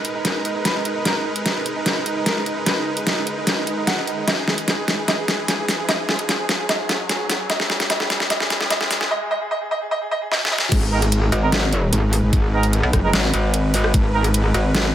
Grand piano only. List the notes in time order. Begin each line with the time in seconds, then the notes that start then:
0.15 D#4
0.35 D#4
0.45 D#4
0.55 D#4
0.65 B4
0.75 D#4
0.85 D#4
0.95 D#4
1.05 A#4
1.16 D#4
1.25 D#4
1.46 D#4
1.56 D#4
1.76 D#4
1.96 D#4
2.06 D#4
2.16 D#4
2.26 A#4
2.36 D#4
2.46 D#4
2.57 D#4
2.66 B4
2.77 D#4
2.87 D#4
3.07 D#4
3.17 D#4
3.37 D#4
3.57 D#4
3.67 D#4
3.77 D#4
3.87 F#5
3.97 D#4
4.07 D#4
4.18 D#4
4.27 D#5
4.38 G#4
4.48 G#4
4.68 G#4
4.78 G#4
4.98 G#4
5.08 D#5
5.18 G#4
5.28 G#4
5.48 G#4
5.58 G#4
5.79 G#4
5.89 D#5
5.99 G#4
6.09 G#4
6.29 G#4
6.39 G#4
6.59 G#4
6.69 D#5
6.79 G#4
6.89 G#4
7.09 G#4
7.20 G#4
7.40 G#4
7.50 D#5
7.60 G#4
7.70 G#4
7.90 D#5
8.00 G#4
8.10 G#4
8.30 D#5
8.40 G#4
8.50 G#4
8.70 D#5
8.81 G#4
8.91 G#4
9.11 D#5
9.21 G#4
9.31 D#5
9.41 G#4
9.51 D#5
9.61 G#4
9.71 D#5
9.81 G#4
9.91 D#5
10.01 G#4
10.11 D#5
10.22 G#4
10.31 D#5
10.42 G#4
10.52 D#5
10.62 G#4